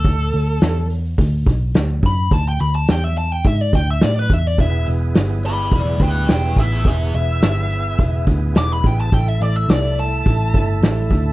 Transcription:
<<
  \new Staff \with { instrumentName = "Lead electric guitar" } { \time 4/4 \key e \mixolydian \tempo 4 = 106 a'4. r2 b''8 | a''16 g''16 b''16 a''16 g''16 e''16 a''16 g''16 e''16 d''16 g''16 e''16 d''16 b'16 e''16 d''16 | e''8 r4 <d'' b''>8 <d'' b''>8 <b' g''>8 <b' g''>8 <gis' e''>8 | <gis' e''>8 e''2 r8 d'''16 b''16 g''16 a''16 |
g''16 e''16 d''16 e''16 d''8 a''2~ a''8 | }
  \new Staff \with { instrumentName = "Tonewheel organ" } { \time 4/4 \key e \mixolydian r1 | r1 | <b e' gis'>1 | <b e' gis'>1 |
<a e' a'>1 | }
  \new Staff \with { instrumentName = "Picked electric bass" } { \clef bass \time 4/4 \key e \mixolydian d,8 d,8 e,4 d,8 b,,8 d,8 fis,8 | d,8 d,8 e,4 gis,8 d,8 a,8 e,8 | e,,8 e,,8 g,,4 e,,8 d,8 e,,8 a,,8 | e,,8 e,,8 g,,4 e,,8 d,8 e,,8 a,,8 |
a,,8 a,,8 c,4 a,,8 g,,8 a,,8 d,8 | }
  \new DrumStaff \with { instrumentName = "Drums" } \drummode { \time 4/4 <hho bd>8 hho8 <hho sn>8 hho8 <hho bd>8 <hho bd>8 <hho sn>8 <hho bd>8 | <hho bd>8 hho8 <hho sn>8 hho8 <hho bd>8 <hho bd>8 <hho sn>8 <hho bd>8 | <hho bd>8 hho8 <hho sn>8 hho8 <hho bd>8 <hho bd>8 <hho sn>8 <hho bd>8 | <hho bd>8 hho8 <hho sn>8 hho8 <hho bd>8 <hho bd>8 <hho sn>8 <hho bd>8 |
<hho bd>8 hho8 <hho sn>8 hho8 <hho bd>8 <hho bd>8 <hho sn>8 <hho bd>8 | }
>>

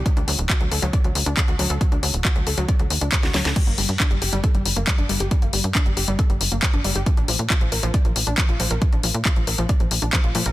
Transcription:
<<
  \new Staff \with { instrumentName = "Synth arpeggio sound" } { \clef bass \time 4/4 \key d \phrygian \tempo 4 = 137 fis16 d'16 fis16 r16 fis'16 fis16 a'16 fis16 d''16 fis16 r16 d'16 fis16 fis'16 fis16 a'16 | fis16 d'16 fis16 r16 fis'16 fis16 a'16 fis16 d''16 fis16 r16 d'16 fis16 fis'16 fis16 a'16 | g16 bes16 g16 r16 d'16 g16 g'16 g16 a'16 g16 r16 bes16 g16 d'16 g16 g'16 | g16 bes16 g16 r16 d'16 g16 g'16 g16 a'16 g16 r16 bes16 g16 d'16 g16 g'16 |
f16 d'16 f16 r16 f'16 f16 bes'16 f16 d''16 f16 r16 d'16 f16 f'16 f16 bes'16 | f16 d'16 f16 r16 f'16 f16 bes'16 f16 d''16 f16 r16 d'16 f16 f'16 f16 bes'16 | }
  \new Staff \with { instrumentName = "Analog synth bass" } { \clef bass \time 4/4 \key d \phrygian r16 d,16 d,16 d,,16 r16 d,16 d,16 d,16 r16 d,16 d,16 d,16 r16 d,16 d,16 d,16 | r16 d,16 d,16 d,,16 r16 d,16 d,16 d,16 r16 d,16 ees,16 d,16 r16 d,16 d,16 d,16 | r16 g,,16 g,,16 g,16 r16 g,,16 g,,16 g,,16 r16 g,,16 g,,16 g,,16 r16 g,,16 g,,16 g,,16 | r16 g,,16 g,,16 g,16 r16 g,,16 g,,16 g,,16 r16 g,,16 g,,16 g,,16 r16 g,,16 g,,16 g,,16 |
r16 bes,,16 bes,,16 bes,16 r16 bes,,16 bes,,16 bes,,16 r16 bes,,16 bes,,16 bes,,16 r16 bes,,16 bes,,16 bes,,16 | r16 bes,,16 bes,,16 bes,16 r16 bes,,16 bes,,16 bes,,16 r16 bes,,16 bes,,16 bes,,16 r16 bes,,16 bes,16 bes,,16 | }
  \new DrumStaff \with { instrumentName = "Drums" } \drummode { \time 4/4 <hh bd>16 hh16 hho16 hh16 <hc hh bd>16 hh16 hho16 hh16 <hh bd>16 hh16 hho16 hh16 <hc hh bd>16 hh16 hho16 hh16 | <hh bd>16 hh16 hho16 hh16 <hc hh bd>16 hh16 hho16 hh16 <hh bd>16 hh16 hho16 hh16 <hc hh bd>16 <hh sn>16 <hho sn>16 <hh sn>16 | <cymc hh bd>16 hh16 hho16 hh16 <hc hh bd>16 hh16 hho16 hh16 <hh bd>16 hh16 hho16 hh16 <hc hh bd>16 hh16 hho16 hh16 | <hh bd>16 hh16 hho16 hh16 <hc hh bd>16 hh16 hho16 hh16 <hh bd>16 hh16 hho16 hh16 <hc hh bd>16 hh16 hho16 hh16 |
<hh bd>16 hh16 hho16 hh16 <hc hh bd>16 hh16 hho16 hh16 <hh bd>16 hh16 hho16 hh16 <hc hh bd>16 hh16 hho16 hh16 | <hh bd>16 hh16 hho16 hh16 <hc hh bd>16 hh16 hho16 hh16 <hh bd>16 hh16 hho16 hh16 <hc hh bd>16 hh16 hho16 hh16 | }
>>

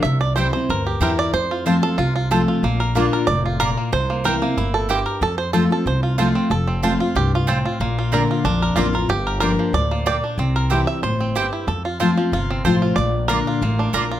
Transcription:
<<
  \new Staff \with { instrumentName = "Mandolin" } { \time 4/4 \key f \major \tempo 4 = 186 r4 <c' e' c'' g''>8 r4. <c' e' c'' g''>8 r8 | r4 <c' f' c'' a''>8 r4. <c' f' c'' a''>8 r8 | r4 <bes f' d'' bes''>8 r4. <bes f' d'' bes''>8 r8 | r4 <bes e' c'' g''>8 r4. <bes e' c'' g''>8 r8 |
r4 <c' f' c'' a''>8 r4. <c' f' c'' a''>8 r8 | r4 <c' f' c'' a''>8 r4. <c' f' c'' a''>8 r8 | r4 <c' f' d'' bes''>8 r4. <c' f' d'' bes''>8 r8 | r4 <bes f' d'' g''>8 r4. <bes f' d'' g''>8 r8 |
r4 <c' e' c'' g''>8 r4. <c' e' c'' g''>8 r8 | r4 <c' f' c'' a''>8 r4. <c' f' c'' a''>8 r8 | r4 <bes f' d'' bes''>8 r4. <bes f' d'' bes''>8 r8 | }
  \new Staff \with { instrumentName = "Five-string banjo" } { \time 4/4 \key f \major << { e''8 d''8 c''8 c''4 r4 d''8 | c''4. a'8 f'4 a'4~ | a'8 r4. d''4 bes'4 | c''4 bes'4 r8 a'8 g'4 |
a'8 c''8 a'8 a'8 c''4. r8 | a'2 g'8 f'8 c'4~ | c'4. r8 d'4 f'4 | g'4 bes'4 d''4 d''4~ |
d''8 r4 e''8 c''2 | a'8 r2 r8 c''4 | d''4 bes'2~ bes'8 r8 | } \\ { r2 bes'8 g'8 bes'4 | r8 f'8 f'4. f'4 f'8 | bes8 bes'8 bes8 bes'4 f'4 bes8 | r8 bes4 bes8 e'4. bes'8 |
r2 r8 f'8 f'8 c'8 | r8 c'8 f'8 f'4. r8 f'8 | bes8 f'8 bes'8 f'4 bes'4 bes'8 | r8 bes'4 f4 bes4 d'8 |
c'8 bes'8 g'4. c'8 g'8 e'8 | r8 f'8 f'8 f8 f'8 c'4 f'8 | r4. f'8 bes8 d'8 bes'8 f'8 | } >> }
  \new Staff \with { instrumentName = "Steel-string acoustic guitar" } { \time 4/4 \key f \major << { r4 <e g c' e'>8 <c' e'>8 r4 <e g c' e'>4 | r4 <f a c' f'>8 <c' f'>8 r4 <f a c' f'>4 | r4 <d bes d' f'>4 r2 | r4 <e bes c' e'>8 <c' e'>8 r2 |
r4 <f a c' f'>8 <c' f'>8 r4 <f a c' f'>4 | r4 <f a c' f'>8 <c' f'>8 r2 | r4 <d bes c' f'>4 r4 <d bes c' f'>8 <c' f'>8 | r4 <f bes d' g'>4 r2 |
r4 <e g c' e'>4 r2 | r4 <f a c' f'>8 <c' f'>8 r4 <f a c' f'>4 | r4 <d bes d' f'>4 r2 | } \\ { c2 g,2 | f,2 c2 | bes,2 a,4 bes,4 | c2 a,4 g,4 |
f,2 c2 | f,2 g,4 a,4 | bes,2 f,2 | g,2 a,4 bes,4 |
c2 a,4 g,4 | f,2 c2 | bes,2 a,4 bes,4 | } >> }
  \new Staff \with { instrumentName = "Upright bass" } { \clef bass \time 4/4 \key f \major c,2 d,4 e,4 | f,2 c,2 | bes,,2 f,,2 | c,2 g,,2 |
f,2 c,2 | f,,2 c,2 | bes,,2 bes,,4 a,,4 | g,,2 d,2 |
c,2 g,,2 | f,2 g,,4 a,,4 | bes,,2 a,,4 bes,,4 | }
>>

